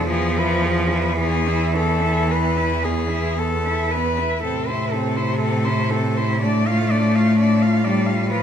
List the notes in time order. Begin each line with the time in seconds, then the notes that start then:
0.07 E2 F3 B3 G#4
0.37 E4 B4
0.62 B3 G#4
0.89 E4
0.93 B4
1.16 E3 B3 G#4
1.48 E4
1.75 B3 A4
2.01 E4
2.29 B3 B4
2.56 E4
2.83 B3 G#4
3.09 E4
3.37 B3 A4
3.66 E4
3.91 B3 B4
4.17 E4
4.43 A2 C3 C4 A4
4.67 E4 C5
4.92 C4 A4
5.16 E4 C5
5.39 C4 A4
5.65 E4 C5
5.90 C4 A4
6.17 E4 C5
6.41 A3 D4 D5
6.67 F4 F5
6.90 D4 D5
7.15 F4 F5
7.38 D4 D5
7.62 F4 F5
7.84 G3 D4 D5
8.06 F4 F5
8.29 F3 F4 B4